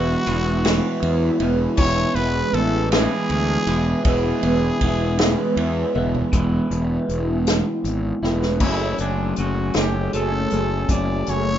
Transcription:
Already playing: E1 E3 G#3 B3 E4 F#4
0.26 E1 E3 G#3 B3 E4, ride
0.64 E3 G#3 B3 E4, snare, ride
1.03 E2, ride
1.40 E1 G#3 B3 E4, ride
1.77 E1 E3 G#3 B3 E4 C#5, kick, crash
2.15 E1 B3 E4 B4, ride
2.20 G#3
2.53 A1 E3 G#3 B3 A4, ride
2.58 E4
2.92 E3 G#3 B3 E4 G#4, snare, ride
3.30 D2, ride
3.67 E1 G#3 B3 E4, ride
4.05 E1 E3 G#3 B3 E4 G#4, kick, ride
4.42 E1 G#3 B3 E4, ride
4.81 E1 E3 G#3 B3 E4, kick, ride
5.19 E3 G#3 B3 E4, snare, ride
5.57 E2, ride
5.94 E1 G#3 B3 E4, high tom
6.15 floor tom
6.32 E1 E3 G#3 B3 E4, kick, closed hi-hat
6.71 E1, closed hi-hat
7.09 E1, closed hi-hat
7.47 snare, closed hi-hat
7.84 G#1, closed hi-hat
8.22 E1 G#3 B3 E4, snare
8.26 E3
8.42 snare
8.60 F#1 F#3 A3 C#4 E4 G#4, kick, crash
8.98 F#1 F#3 A3 C#4 D4 G#4, closed hi-hat
9.36 F#1 F#3 A3 C#4 F#4 G#4, closed hi-hat
9.74 F#1 F#3 A3 C#4 G4 G#4, snare, closed hi-hat
10.13 F#1 F#3 A3 C#4 G#4 A4, closed hi-hat
10.50 F#1 F#3 A3 C#4 G#4, closed hi-hat
10.89 F#1 F#3 A3 C#4 G#4 D5, kick, closed hi-hat
11.26 F#1 F#3 A3 C#4 G#4 C#5, closed hi-hat

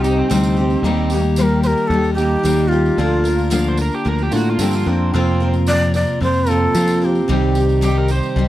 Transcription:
Already playing: C2
0.04 C3 G3 C4 D#4 G4, tambourine
0.18 C4
0.30 D2 C3 G3 C4 D#4 G4, tambourine
0.43 tambourine
0.56 C4 D#4 G4, tambourine
0.70 tambourine
0.83 D#2 D#3 G3 A#3 D#4 G4
1.10 D#4 G4, tambourine
1.14 A#3
1.24 tambourine
1.36 D#3 G3 A#3 D#4 G4 C5, tambourine
1.42 A#4
1.63 D#4 G4 A#4 C5, tambourine
1.67 A#3
1.78 tambourine
1.87 D#2 G3 A4
1.92 A#3 D#4 G4
2.04 tambourine
2.14 G4
2.18 D#3 G3 A#3 D#4 G4, tambourine
2.43 D#2 D#3 G3 A#3 D#4 G4, tambourine
2.68 F4 G4
2.72 A#3 D#4, tambourine
2.86 tambourine
2.98 D2 D3 F3 A#3 D4 F4 A#4, tambourine
3.24 A#3 D4 A#4, tambourine
3.38 tambourine
3.50 D3 F3 A#3 D4 A#4 F5, tambourine
3.68 C5
3.77 A#3 D4 A#4, tambourine
3.82 A#4
3.92 G4, tambourine
4.05 D2 F3 A#3 D4 A#4
4.18 tambourine
4.23 G4
4.31 A2 D3 A#3 D4 F4 A#4, tambourine
4.36 F#4
4.49 F4
4.59 G2 D3 F3 A#3 C4 D4 F4 A#4, tambourine
4.73 F4, tambourine
4.86 F2 A#3 C4 D4 A#4, tambourine
5.13 F2 C3 F3 A#3 C4 F4 A#4
5.40 C4 F4 A#4
5.53 tambourine
5.67 F3 C4 F4 A#4 D5, tambourine
5.94 C4 F4 A#4 D5, tambourine
6.07 tambourine
6.20 F2 F3 C4 F4 A#4 C5
6.34 tambourine
6.47 F2 C3 F3 A#3 F4 A4 A#4, tambourine
6.51 C4
6.74 F2 C3 F3 A#3 C4 F4 A#4, tambourine
6.88 tambourine
7.02 C4 F4 G4 A#4, tambourine
7.15 tambourine
7.28 C2 C3 D#3 G3 C4 D#4 G4
7.55 C4 D#4 G4, tambourine
7.69 tambourine
7.81 C3 G3 C4 D#4 G4, tambourine
7.97 A#4
8.08 C4 D#4 G4 C5, tambourine
8.23 tambourine
8.36 C2 G3 C4 D#4 G4

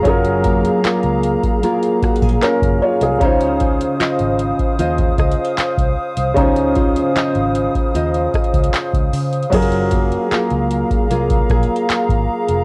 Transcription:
Already playing: A#3 F4 G#4 F5 A#5
0.03 F#1 F#3 C#4 F4, kick, closed hi-hat
0.07 G#4 A#4
0.25 closed hi-hat
0.44 A#3, kick, closed hi-hat
0.65 closed hi-hat
0.84 A#3 F4 G#4, muted fingered electric bass stroke, clap, closed hi-hat
1.03 C#2, closed hi-hat
1.23 closed hi-hat
1.43 kick, closed hi-hat
1.63 A#3 F4 G#4, closed hi-hat
1.83 closed hi-hat
2.02 F#4, muted fingered electric bass stroke, kick, cross-stick, closed hi-hat
2.16 closed hi-hat
2.22 A#1 G#4, kick
2.29 closed hi-hat
2.42 C#4 F4 A#4, clap, closed hi-hat
2.62 F#1, kick, closed hi-hat
2.82 F4 C#5
3.01 C2 G#4 F5, closed hi-hat
3.19 C#2 C#3 C#4 D#4 C5 F5 D#6, kick, closed hi-hat
3.23 F4 C5
3.41 closed hi-hat
3.60 F4, kick, closed hi-hat
3.81 closed hi-hat
4.00 F4 C5 D#5, muted fingered electric bass stroke, clap, closed hi-hat
4.19 G#1, closed hi-hat
4.39 closed hi-hat
4.59 kick, closed hi-hat
4.79 D#2 F4 C5 D#5, closed hi-hat
4.98 kick, closed hi-hat
5.18 C#2 D#5, kick, cross-stick, closed hi-hat
5.32 closed hi-hat
5.45 closed hi-hat
5.57 C5, muted fingered electric bass stroke, clap, closed hi-hat
5.78 C2, kick, closed hi-hat
6.17 C2, closed hi-hat
6.34 C#2 C#3 C#4 D#4, kick, closed hi-hat
6.39 F4 C5
6.56 closed hi-hat
6.75 F4, kick, closed hi-hat
6.96 closed hi-hat
7.15 F4 C5 D#5, muted fingered electric bass stroke, clap, closed hi-hat
7.35 G#1, closed hi-hat
7.55 closed hi-hat
7.75 kick, closed hi-hat
7.94 D#2 F4 C5 D#5, closed hi-hat
8.14 closed hi-hat
8.34 D#5, muted fingered electric bass stroke, kick, cross-stick, closed hi-hat
8.44 closed hi-hat
8.54 C#2, kick, closed hi-hat
8.64 closed hi-hat
8.73 C5, muted fingered electric bass stroke, clap, closed hi-hat
8.93 C#2, kick, closed hi-hat
9.13 C#3, open hi-hat
9.33 closed hi-hat
9.43 closed hi-hat
9.50 F#1 F#3 C#4 F4 G#4 F5 A#5, kick, closed hi-hat, crash
9.54 G#4 A#4
9.62 closed hi-hat
9.72 closed hi-hat
9.91 A#3, kick, closed hi-hat
10.12 closed hi-hat
10.31 A#3 F4 G#4, muted fingered electric bass stroke, clap, closed hi-hat
10.50 C#2, closed hi-hat
10.71 closed hi-hat
10.91 kick, closed hi-hat
11.10 C2 A#3 F4 G#4, closed hi-hat
11.30 kick, closed hi-hat
11.50 A#1 G#4, kick, cross-stick, closed hi-hat
11.63 closed hi-hat
11.76 closed hi-hat
11.89 F4, muted fingered electric bass stroke, clap, closed hi-hat
12.09 G#1, kick, closed hi-hat
12.48 F1, closed hi-hat

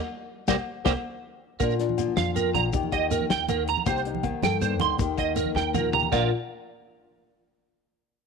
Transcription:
0.48 C2 G3 A#3 C4 G4 A#4 C5, kick, snare, high conga, low agogo, shekere
0.84 C2 G3 A#3 C4 G4 A#4 C5, kick, snare, high conga, low agogo, shekere
1.60 A#2 A#3 D4 F4 A#4, kick, closed hi-hat, high conga, low agogo, shekere
1.70 shekere
1.79 D4, snare, closed hi-hat, low conga
1.89 low conga
1.97 F3, closed hi-hat, high conga, low agogo, shekere
2.08 low conga
2.16 F2 F4 F5, snare, closed hi-hat, low conga, shekere
2.34 F2 A#4, closed hi-hat, high conga, low conga, shekere
2.46 low conga
2.54 A#1 D4 A#5, closed hi-hat, low conga, low agogo
2.72 D#2 D#3 D#4 G4, kick, closed hi-hat, high conga, low conga, shekere
2.83 low conga
2.92 G4 D#5, kick, closed hi-hat, low agogo
3.11 A#3 A#4, closed hi-hat, high conga, shekere
3.21 low conga
3.30 D#2 G5, snare, closed hi-hat
3.49 D#3 A#4, closed hi-hat, high conga, low conga, low agogo, shekere
3.68 A#5, muted nylon-string guitar stroke, closed hi-hat
3.77 low conga
3.86 C2 C3 C4 D#4 G4 C5, kick, closed hi-hat, high conga, low agogo, shekere
3.97 shekere
4.05 D#4, closed hi-hat, low conga
4.15 low conga
4.23 D#3, kick, closed hi-hat, high conga, low agogo
4.33 low conga
4.42 G2 A4 G5, snare, closed hi-hat, low conga, shekere
4.61 G2 C5, closed hi-hat, high conga, low conga, shekere
4.71 low conga
4.80 D2 D#4 C6, closed hi-hat, low conga, low agogo
4.99 D#2 D#3 D#4 G4, kick, closed hi-hat, high conga, low conga, shekere
5.18 D#5, muted nylon-string guitar stroke, kick, closed hi-hat, low agogo
5.36 A#3 A#4, closed hi-hat, high conga, shekere
5.46 low conga
5.55 D#2 A#4 G5, snare
5.74 A#2 A#4, mid tom, high conga, low conga, low agogo, shekere
5.93 G4 A#5, floor tom
6.03 low conga
6.12 A#1 A#2 F3 A#3 D4 F4 A#4 D5 F5, kick, crash, high conga, low agogo, shekere

